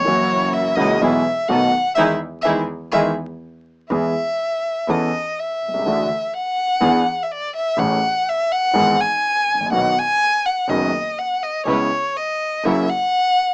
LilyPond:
<<
  \new Staff \with { instrumentName = "Violin" } { \time 4/4 \key e \major \tempo 4 = 124 cis''4 e''8 dis''8 e''4 fis''4 | e''8 r8 e''8 r8 e''8 r4. | e''2 dis''4 e''4~ | e''4 fis''4.~ fis''16. e''32 d''8 e''8 |
fis''4 e''8 fis''4 gis''4. | fis''8 gis''4 fis''8 dis''4 fis''8 dis''8 | cis''4 dis''4 e''8 fis''4. | }
  \new Staff \with { instrumentName = "String section" } { \time 4/4 \key e \major <ais e' fis'>4. <ais e' fis'>8 <b e' gis'>8 r8 <b dis' a'>8 r8 | <dis' e' gis'>8 r8 <dis' e' gis'>8 r8 <dis' e' gis'>8 r4. | r1 | r1 |
r1 | r1 | <cis' e' b'>8 r4. <e' fis' ais'>8 r4. | }
  \new Staff \with { instrumentName = "Grand piano" } { \clef bass \time 4/4 \key e \major <fis, e fis ais cis' fis'>4. <cis, cis e ais cis' fis'>8 <b,, b, e gis b gis'>8 r8 <b,, b, dis a b fis'>8 r8 | <dis e gis>8 r8 <dis e gis>8 r8 <dis e gis>8 r4. | <e, e gis b gis'>8 r4. <e, e b cis' a'>8 r4 r32 b,,32 c,32 cis,32 | <d, d e a d' fis'>8 r4. <e, e b d' gis'>8 r4. |
<a,, a, e a cis' gis'>8 r4. <gis,, gis, e gis b gis'>8 r4 r32 gis,,32 a,,32 ais,,32 | <b,, b, dis fis b fis'>8 r4. <fis,, fis, dis fis b fis'>8 r4. | <cis, cis gis b e'>8 r4. <fis, cis fis ais e'>8 r4. | }
  \new Staff \with { instrumentName = "Double bass" } { \clef bass \time 4/4 \key e \major fis,,4. cis,8 b,,8 r8 b,,8 r8 | e,8 r8 e,8 r8 e,8 r4. | e,8 r4. e,8 r4 c,8 | d,8 r4. e,8 r4. |
a,,8 r4. gis,,8 r4 a,,8 | b,,8 r4. fis,,8 r4. | cis,8 r4. fis,,8 r4. | }
>>